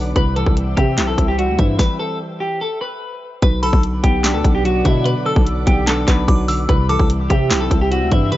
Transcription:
Already playing: B1 B2 D3 F#3 B3 D4 B4 D5 F#5 D6
0.15 C2 C3 B4 C5 E5 G5 E6, kick, closed hi-hat
0.36 E3 A4, closed hi-hat
0.46 C2, kick
0.57 closed hi-hat
0.77 C3 C4 G4, kick, closed hi-hat
0.97 B1 E4, snare, clap, closed hi-hat
1.07 A4
1.18 C2 C4, kick, closed hi-hat
1.28 G4
1.38 G3 F#4, closed hi-hat
1.49 D2
1.58 G2 E3 E4, kick, closed hi-hat
1.79 B4, kick, snare
1.99 A4
2.40 G4
2.61 A4
2.81 B4
3.42 B1 B2 B4 D5 F#5 D6, kick, closed hi-hat
3.63 D3 A4 B5, closed hi-hat
3.73 B1, kick
3.83 closed hi-hat
4.03 B1 B3 G4, kick, closed hi-hat
4.24 D4, snare, clap, closed hi-hat
4.34 D2 A4
4.44 B1 B3, kick, closed hi-hat
4.55 G4
4.65 F#3 F#4, closed hi-hat
4.84 B2 D3 E4, kick, closed hi-hat
5.05 B2 B4, closed hi-hat
5.26 D3 A4 E6
5.36 B1, kick
5.47 closed hi-hat
5.67 B1 B3 G4, kick, closed hi-hat
5.87 D4 A4, snare, clap, closed hi-hat
6.08 B1 B3 B4, kick, snare, clap, closed hi-hat
6.28 B1 F#3 D6, kick, closed hi-hat
6.48 D3 E6, open hi-hat
6.68 C2 C3 C4 B4 E5 G5 E6, kick, closed hi-hat
6.89 E3 A4 D6, closed hi-hat
6.99 C2, kick
7.10 closed hi-hat
7.30 C3 C4 G4, kick, closed hi-hat
7.50 B1 E4, snare, clap, closed hi-hat
7.60 A4
7.70 C2 C4, kick, closed hi-hat
7.81 G4
7.91 G3 F#4, closed hi-hat
8.02 D2
8.11 G2 E3 E4, kick, closed hi-hat
8.32 C3 B4, closed hi-hat

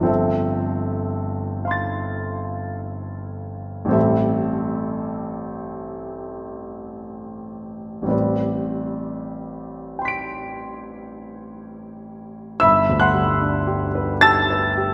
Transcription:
0.00 G1 F3 C4
0.05 A4 E5
1.65 F5 C6
1.71 A6
3.85 A1 G3 C4
3.91 A4 E5
8.02 A1 G3
8.06 C4 B4
8.11 D5
9.99 G5 C6
10.05 B6 D7
12.60 G1 E5 B5 E6
12.89 D2
13.00 F#5 C6 F#6
13.13 G3
13.41 D4
13.67 G4
13.95 B4
14.21 G4 A5 E6 A6
14.50 B4
14.77 G4

